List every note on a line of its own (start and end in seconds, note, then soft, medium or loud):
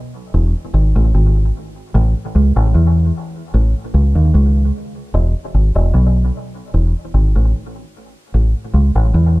0.34 0.53 E1 medium
0.74 0.93 G#1 medium
0.96 1.12 A1 loud
1.14 1.50 G#1 medium
1.95 2.13 A1 loud
2.35 2.54 C#2 medium
2.56 2.73 A1 medium
2.75 3.11 E2 loud
3.54 3.73 A1 loud
3.94 4.13 C#2 medium
4.15 4.32 D#2 medium
4.34 4.70 C#2 medium
5.14 5.33 E1 loud
5.54 5.73 G#1 medium
5.75 5.92 E1 medium
5.94 6.30 B1 medium
6.74 6.93 E1 medium
7.14 7.33 G#1 medium
7.36 7.52 A1 medium
8.34 8.53 A1 loud
8.74 8.93 C#2 medium
8.95 9.12 A1 medium
9.14 9.40 E2 loud